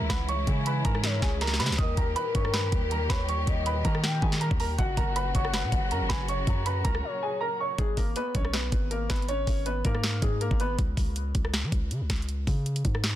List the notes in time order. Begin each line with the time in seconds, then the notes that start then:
Already playing: C#3 E3 G#3 E4
0.01 C#2
0.09 C#2 B4 F#5 B5, kick, snare
0.29 C#5 C#6, closed hi-hat
0.47 C#3 G#5, kick, closed hi-hat
0.66 B4 B5, closed hi-hat
0.85 G#2 A#4 A#5, kick, closed hi-hat
0.95 cross-stick
1.04 C#5, snare, closed hi-hat
1.22 C#2 G#4 G#5, kick, snare
1.41 A#4 A#5, snare, closed hi-hat
1.47 snare
1.54 snare
1.59 C#3 B4 B5, snare, closed hi-hat, open hi-hat
1.66 C#2, snare, closed hi-hat
1.72 snare, closed hi-hat
1.78 D#2 A#2 D#3 G3 G4 A#4 D#5 D#6, kick, closed hi-hat
1.97 D#2 A#4 A#5, kick, closed hi-hat
2.16 B4 B5, closed hi-hat
2.35 G2 C#5 C#6, kick, closed hi-hat
2.45 cross-stick
2.53 B4 B5, snare, closed hi-hat
2.72 D#2, kick, closed hi-hat
2.91 A#4 A#5, closed hi-hat
3.10 D#2 B4 C#5 B5, kick, snare
3.29 C#5 C#6, closed hi-hat
3.47 D#2 D#5, kick, closed hi-hat
3.66 B4 B5, closed hi-hat
3.85 D#3 A#4 A#5, kick, closed hi-hat
3.95 cross-stick
4.03 G5, snare, closed hi-hat
4.22 D#3 G#4 G#5, kick
4.32 snare
4.41 A#4 A#5, closed hi-hat
4.51 D#2, kick
4.60 A#4 A#5, open hi-hat
4.78 F#1 C#3 F#3 F#4 F#5, kick, closed hi-hat
4.97 F#1 A#4 A#5, kick, closed hi-hat
5.16 B4 B5, closed hi-hat
5.35 F#1 C#5 C#6, kick, closed hi-hat
5.45 cross-stick
5.54 B4 B5, snare, closed hi-hat
5.63 A#2
5.72 F#1, kick, closed hi-hat
5.91 F#2 A#4 A#5, closed hi-hat
6.01 F#1
6.09 F#1 B4 G#5 B5, kick, snare
6.29 C#5 C#6, closed hi-hat
6.47 F#2 A#5, kick, closed hi-hat
6.66 B4 B5, closed hi-hat
6.84 C#2 A#4 A#5, kick, closed hi-hat
6.95 cross-stick
7.03 C#5
7.23 G#4 G#5
7.41 A#4 A#5
7.60 C#5 C#6
7.78 G#1 G#3 G#4, kick, closed hi-hat
7.97 G#1 A#3 A#4, kick, open hi-hat
8.16 B3 B4, closed hi-hat
8.35 B1 C#4 C#5, kick, closed hi-hat
8.45 cross-stick
8.53 B3 B4, snare, closed hi-hat
8.72 G#1, kick, closed hi-hat
8.91 A#3 A#4, closed hi-hat
9.09 G#1 B3 B4, kick, snare, closed hi-hat
9.16 closed hi-hat
9.22 closed hi-hat
9.29 C#4 C#5, closed hi-hat
9.47 G#1, kick, open hi-hat
9.66 B3 B4, closed hi-hat
9.85 G#2 A#3 A#4, kick, closed hi-hat
9.95 cross-stick
10.04 snare, closed hi-hat
10.22 G#2 G#3 G#4, kick, closed hi-hat
10.41 A#3 A#4, closed hi-hat
10.51 G#1, kick
10.60 B3 B4, closed hi-hat
10.79 C#2, kick, closed hi-hat
10.97 C#2, kick, open hi-hat
11.16 closed hi-hat
11.35 C#2, kick, closed hi-hat
11.45 cross-stick
11.54 snare, closed hi-hat
11.63 E3
11.72 C#2, kick, closed hi-hat
11.91 C#3, closed hi-hat
12.01 C#2
12.10 C#2, kick, snare, closed hi-hat
12.16 closed hi-hat
12.22 closed hi-hat
12.29 closed hi-hat
12.47 C#3, kick, open hi-hat
12.66 closed hi-hat
12.76 closed hi-hat
12.85 G#2, kick, closed hi-hat
12.95 cross-stick
13.04 snare, closed hi-hat